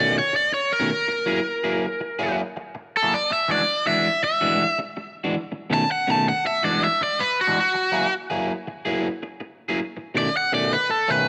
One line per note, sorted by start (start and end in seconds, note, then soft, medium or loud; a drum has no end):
0.00 0.18 B2 medium
0.00 0.18 D#3 medium
0.00 0.18 A3 medium
0.00 0.17 C#4 loud
0.00 0.16 D5 medium
0.18 0.35 C#5 medium
0.33 0.53 D5 medium
0.33 muted clean electric guitar stroke medium
0.52 0.71 C#5 medium
0.52 muted clean electric guitar stroke soft
0.73 2.35 A#4 medium
0.79 0.90 B2 medium
0.79 0.90 D#3 medium
0.79 0.90 A3 medium
0.79 0.89 C#4 medium
1.08 muted clean electric guitar stroke soft
1.26 1.38 F#3 medium
1.26 1.39 A#3 medium
1.26 1.39 E4 medium
1.26 1.39 G#4 medium
1.64 1.85 F#3 medium
1.64 1.85 A#3 medium
1.64 1.85 E4 medium
1.64 1.85 G#4 medium
2.01 muted clean electric guitar stroke soft
2.19 2.41 F#3 medium
2.19 2.41 A#3 medium
2.19 2.40 E4 loud
2.19 2.40 G#4 loud
2.57 muted clean electric guitar stroke soft
2.75 muted clean electric guitar stroke soft
2.97 3.13 A4 medium
3.02 3.13 F#3 medium
3.02 3.13 A#3 medium
3.02 3.12 E4 medium
3.02 3.12 G#4 medium
3.14 3.31 D5 medium
3.30 3.50 E5 medium
3.30 muted clean electric guitar stroke medium
3.48 3.61 E3 medium
3.48 3.61 G#3 medium
3.48 3.61 D4 loud
3.48 3.62 F#4 loud
3.48 3.87 D5 loud
3.86 4.07 E3 medium
3.86 4.07 G#3 medium
3.86 4.07 D4 medium
3.86 4.07 F#4 medium
3.86 4.23 E5 medium
4.23 4.78 E5 loud
4.23 muted clean electric guitar stroke soft
4.41 4.63 E3 medium
4.41 4.63 G#3 medium
4.41 4.63 D4 medium
4.41 4.62 F#4 loud
4.78 muted clean electric guitar stroke medium
4.97 muted clean electric guitar stroke medium
5.24 5.35 E3 medium
5.24 5.34 G#3 medium
5.24 5.34 D4 medium
5.24 5.34 F#4 medium
5.52 muted clean electric guitar stroke medium
5.70 5.83 B2 loud
5.70 5.83 D#3 medium
5.70 5.83 A3 medium
5.70 5.83 C#4 loud
5.70 5.91 A5 medium
5.91 6.10 F#5 medium
6.07 6.29 B2 medium
6.07 6.29 D#3 medium
6.07 6.29 A3 medium
6.07 6.29 C#4 medium
6.07 6.27 A5 medium
6.29 6.46 F#5 medium
6.45 6.64 E5 loud
6.45 muted clean electric guitar stroke soft
6.63 6.85 E3 medium
6.63 6.85 G#3 medium
6.63 6.85 D4 loud
6.63 6.85 F#4 loud
6.63 6.83 D5 medium
6.84 7.01 E5 medium
7.01 7.20 D5 medium
7.01 muted clean electric guitar stroke medium
7.19 7.38 B4 medium
7.19 muted clean electric guitar stroke soft
7.41 7.58 F#4 medium
7.47 7.57 E3 medium
7.47 7.57 G#3 medium
7.47 7.57 D4 medium
7.47 7.57 F#4 medium
7.61 8.13 F#4 loud
7.74 muted clean electric guitar stroke medium
7.92 8.05 F#3 medium
7.92 8.05 A#3 medium
7.92 8.05 E4 loud
7.92 8.06 G#4 medium
8.30 8.52 F#3 medium
8.30 8.52 A#3 medium
8.30 8.52 E4 medium
8.30 8.51 G#4 medium
8.68 muted clean electric guitar stroke soft
8.85 9.07 F#3 medium
8.85 9.07 A#3 medium
8.85 9.07 E4 loud
8.85 9.07 G#4 loud
9.23 muted clean electric guitar stroke medium
9.40 muted clean electric guitar stroke medium
9.69 9.79 F#3 medium
9.69 9.79 A#3 medium
9.69 9.79 E4 medium
9.69 9.79 G#4 medium
9.97 muted clean electric guitar stroke soft
10.14 10.27 B2 medium
10.14 10.28 D#3 medium
10.14 10.28 A3 medium
10.14 10.28 C#4 loud
10.14 10.35 D5 medium
10.37 10.54 F#5 medium
10.52 10.74 B2 medium
10.52 10.74 D#3 medium
10.52 10.74 A3 medium
10.52 10.74 C#4 medium
10.52 10.72 D5 medium
10.73 10.91 B4 medium
10.89 11.10 A4 medium
10.89 muted clean electric guitar stroke soft
11.08 11.28 B2 medium
11.08 11.28 D#3 medium
11.08 11.28 A3 medium
11.08 11.28 C#4 medium
11.08 11.28 B4 medium